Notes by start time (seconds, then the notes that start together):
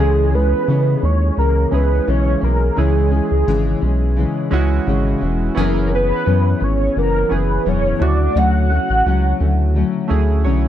Already playing: C#3 G#3 C#4 E4
0.00 C#2 E3 G#3 C#4 G#4
0.32 E3 G#3 C#4 B4
0.67 C#3 E3 G#3 C#4
1.02 D#2 G#3 C#4 C#5
1.37 C#2 C#3 E3 G#3 C#4 A#4
1.71 C#2 G#3 C#4 E4 G#4 B4
1.75 E3
2.07 B1 C#3 E3 G#3 C#4 C#5
2.41 B1 E3 G#3 C#4 A#4
2.76 C#2 C#3 E3 G#3 C#4 E4 G#4
3.11 E3 G#3 C#4
3.31 C#2
3.47 G#1 C#3 E3 G#3 C#4
3.81 B1 E3 G#3 C#4
4.16 C#3 E3 G#3 C#4
4.51 C#2 G#3 C#4 E4 F#4
4.55 E3
4.87 G#1 C#3 E3 G#3 C#4
5.21 E1 E3 G#3 C#4
5.55 F#1 F#2 E3 B3 C#4 E4 G#4
5.59 C#4 A#4
5.91 E3 B3 C#4 B4
6.26 F#2 E3 B3 C#4
6.60 G#1 B3 C#4 C#5
6.64 E3
6.95 F#1 F#2 E3 B3 C#4 A#4
7.29 F#1 B3 C#4 E4 G#4
7.33 E3 B4
7.65 E1 F#2 E3 B3 C#4 C#5
7.99 D2 C#3 A3 E4 F#4 D5
8.04 F#3
8.35 D2 D3 F#3 A3 C#4 F#5
8.70 F#3 A3 C#4
8.90 A1
9.06 C#2 F#3 A3 C#4
9.40 D2 F#3 A3 C#4
9.74 D3 F#3 A3 C#4
10.08 D2 A3 C#4 E4 G#4
10.13 F#3
10.44 B1 D3 F#3 A3 C#4 C#5